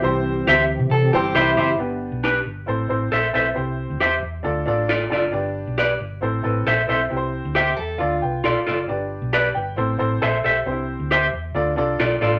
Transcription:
<<
  \new Staff \with { instrumentName = "Clean electric guitar" } { \time 4/4 \key c \major \tempo 4 = 135 r4 <g' c'' e''>8 r4. <g' c'' e''>8 <g' c'' e''>16 r16 | r4 <d' g' b'>8 r4. <a' c'' e''>8 <a' c'' e''>16 r16 | r4 <g' c'' e''>8 r4. <f' a' d''>8 <f' a' d''>16 r16 | r4 <g' b' d''>8 r4. <a' c'' e''>8 <a' c'' e''>16 r16 |
r4 <g' c'' e''>8 r4. <f' a' d''>8 <f' a' d''>16 r16 | r4 <g' b' d''>8 r4. <a' c'' e''>8 <a' c'' e''>16 r16 | r4 <g' c'' e''>8 r4. <f' a' d''>8 <f' a' d''>16 r16 | }
  \new Staff \with { instrumentName = "Clean electric guitar" } { \time 4/4 \key c \major r2 a'8 g'8 e'4 | r1 | r1 | r1 |
r4 g'8 a'8 f'4. r8 | r1 | r1 | }
  \new Staff \with { instrumentName = "Upright piano" } { \time 4/4 \key c \major << { r1 | r1 | r2. d''8 a''8 | r1 |
r2 r8 <b' g''>8 <a' f''>8 <f' d''>8~ | <f' d''>8 r8 a''8 <b' g''>4 r8 <c'' a''>8 <g' e''>8~ | <g' e''>8 r2. r8 | } \\ { <g c' e' g' c''>4 r4. <g c' e' g' c''>4 r8 | <b d' g' b'>4 r4 <c' e' a' c''>8 <c' e' a' c''>8 r8 <c' e' a' b'>8 | <c' e' g' c''>4 r4 <d' f' a' d''>8 <d' f' a' d''>8 r8 <d' f' a' d''>8 | <d' g' b' d''>4 r4 <c' e' a' c''>8 <c' e' a' b'>8 r8 <c' e' a' c''>8 |
<c' e' g' b' c''>4 r4 <d' f' a' d''>8 r4. | <d' g' b' d''>4 r4 <c' e' a' c''>8 <c' e' a' c''>8 r4 | <c' d' e' g' c''>4 r4 <d' f' a' d''>8 <d' f' a' d''>8 r8 <d' f' a' d''>8 | } >> }
  \new Staff \with { instrumentName = "Tonewheel organ" } { \time 4/4 \key c \major <e c' g'>1 | r1 | r1 | r1 |
r1 | r1 | r1 | }
  \new Staff \with { instrumentName = "Fingered electric bass" } { \clef bass \time 4/4 \key c \major c,4 d,8. c16 c8 g,,8 c,8 fis,,8 | g,,8. b,,8. g,,8 a,,8 a,,8 bes,,8 b,,8 | c,8. d,16 r8 e,8 d,8 a,,4 fis,,8 | g,,8. b,,8. g,,8 a,,8 a,,8 bes,,8 b,,8 |
c,8. d,8. e,8 d,8 c,8 b,,16 r16 fis,,8 | g,,8. b,,8. g,,8 a,,8 a,,8 bes,,8 b,,8 | c,8. d,8. e,8 d,8 c,8 b,,8 a,,8 | }
>>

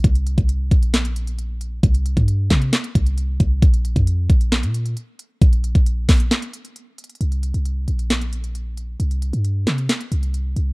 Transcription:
<<
  \new Staff \with { instrumentName = "808-style bass" } { \clef bass \time 4/4 \key bes \mixolydian \tempo 4 = 134 c,8. c,8. bes,,2~ bes,,8 | c,8. g,8. c8 r8 c,4 c,8 | bes,,8. f,8. bes,,8. bes,8. r4 | bes,,8. bes,,8. bes,,8 r2 |
c,8. c,8. bes,,2~ bes,,8 | c,8. g,8. c8 r8 c,4 c,8 | }
  \new DrumStaff \with { instrumentName = "Drums" } \drummode { \time 4/4 <hh bd>16 hh16 hh16 <hh bd>16 hh8 <hh bd>16 hh16 <hc hh sn>16 hh16 hh16 hh16 hh8 hh8 | <hh bd>16 hh16 hh16 <hh bd>16 hh8 <hc hh bd sn>16 hh16 <hc hh sn>16 hh16 <hh bd>16 hh16 hh8 <hh bd>8 | <hh bd>16 hh16 hh16 <hh bd>16 hh8 <hh bd>16 hh16 <hc hh sn>16 hh16 hh16 hh16 hh8 hh8 | <hh bd>16 hh16 hh16 <hh bd>16 hh8 <hc hh hho bd sn>16 hh16 <hc hh sn>16 hh16 hh16 hh16 hh8 hh32 hh32 hh32 hh32 |
hh16 hh16 hh16 hh16 hh8 hh16 hh16 <hc hh sn>16 hh16 hh16 hh16 hh8 hh8 | hh16 hh16 hh16 hh16 hh8 <hc hh sn>16 hh16 <hc hh sn>16 hh16 hh16 hh16 hh8 hh8 | }
>>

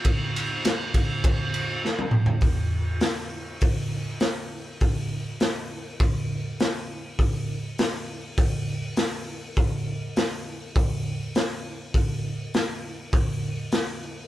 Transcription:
\new DrumStaff \with { instrumentName = "Drums" } \drummode { \time 4/4 \tempo 4 = 101 <bd cymr>8 cymr8 <cymr sn>8 <bd cymr>8 <bd cymr>8 cymr8 sn16 tommh16 toml16 tomfh16 | <hho bd>4 <hho sn>4 <hho bd>4 <hho sn>4 | <hho bd>4 <hho sn>4 <hho bd>4 <hho sn>4 | <hho bd>4 <hho sn>4 <hho bd>4 <hho sn>4 |
<hho bd>4 <hho sn>4 <hho bd>4 <hho sn>4 | <hho bd>4 <hho sn>4 <hho bd>4 <hho sn>4 | }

